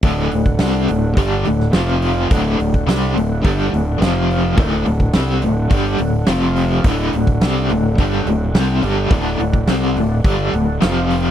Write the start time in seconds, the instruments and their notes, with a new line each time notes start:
0.03 fingered electric bass D1, overdriven electric guitar D2 A2 D3, tonewheel organ D4 A4 F#5, kick, open hi-hat
0.31 fingered electric bass D1, overdriven electric guitar D2 A2, open hi-hat
0.46 kick
0.59 fingered electric bass C2, overdriven electric guitar C3 G3 C4, snare, open hi-hat
0.88 fingered electric bass D1, overdriven electric guitar D2 A2, open hi-hat
1.17 fingered electric bass G1, overdriven electric guitar G2 D3 G3, kick, open hi-hat
1.45 fingered electric bass D1, overdriven electric guitar D2 A2, open hi-hat
1.60 snare
1.73 fingered electric bass F1, overdriven electric guitar F2 C3 F3, tonewheel organ C4 F4 F5, snare, open hi-hat
2.02 open hi-hat
2.30 fingered electric bass D1, overdriven electric guitar D2 A2 D3, tonewheel organ D4 A4 F#5, kick, open hi-hat
2.57 fingered electric bass D1, overdriven electric guitar D2 A2, open hi-hat
2.74 kick
2.86 fingered electric bass C2, overdriven electric guitar C3 G3 C4, snare, open hi-hat
3.15 fingered electric bass D1, overdriven electric guitar D2 A2, open hi-hat
3.43 fingered electric bass G1, overdriven electric guitar G2 D3 G3, kick, open hi-hat
3.71 fingered electric bass D1, overdriven electric guitar D2 A2, open hi-hat
3.98 fingered electric bass F1, overdriven electric guitar F2 C3 F3, open hi-hat
4.02 tonewheel organ C4 F4 F5, snare
4.31 open hi-hat
4.56 fingered electric bass D1, overdriven electric guitar D2 A2 D3, tonewheel organ D#4 A#4 G5, kick, open hi-hat
4.76 tonewheel organ D4 A4 F#5
4.85 fingered electric bass D1, overdriven electric guitar D2 A2, open hi-hat
5.00 kick
5.13 fingered electric bass C2, overdriven electric guitar C3 G3 C4, snare, open hi-hat
5.42 fingered electric bass D1, overdriven electric guitar D2 A2, open hi-hat
5.69 fingered electric bass G1, overdriven electric guitar G2 D3 G3, kick, open hi-hat
5.98 fingered electric bass D1, overdriven electric guitar D2 A2, open hi-hat
6.26 fingered electric bass F1, overdriven electric guitar F2 C3 F3, tonewheel organ C4 F4 F5, snare, open hi-hat
6.56 open hi-hat
6.84 fingered electric bass D1, overdriven electric guitar D2 A2 D3, tonewheel organ D4 A4 F#5, kick, open hi-hat
7.13 fingered electric bass D1, overdriven electric guitar D2 A2, open hi-hat
7.27 kick
7.41 fingered electric bass C2, overdriven electric guitar C3 G3 C4, snare, open hi-hat
7.70 fingered electric bass D1, overdriven electric guitar D2 A2, open hi-hat
7.98 fingered electric bass G1, overdriven electric guitar G2 D3 G3, kick, open hi-hat
8.26 fingered electric bass D1, overdriven electric guitar D2 A2, open hi-hat
8.54 fingered electric bass C2, overdriven electric guitar C3 G3 C4, snare, open hi-hat
8.82 fingered electric bass G1, overdriven electric guitar G2 D3 G3, open hi-hat
9.10 fingered electric bass D1, overdriven electric guitar D2 A2 D3, tonewheel organ A4 D5 F#5, kick, open hi-hat
9.39 fingered electric bass D1, overdriven electric guitar D2 A2, open hi-hat
9.53 kick
9.67 fingered electric bass C2, overdriven electric guitar C3 G3 C4, snare, open hi-hat
9.96 fingered electric bass D1, overdriven electric guitar D2 A2, open hi-hat
10.24 fingered electric bass G1, overdriven electric guitar G2 D3 G3, kick, open hi-hat
10.53 fingered electric bass D1, overdriven electric guitar D2 A2, open hi-hat
10.81 fingered electric bass F1, overdriven electric guitar F2 C3 F3, tonewheel organ C4 F4 F5, snare, open hi-hat
11.10 open hi-hat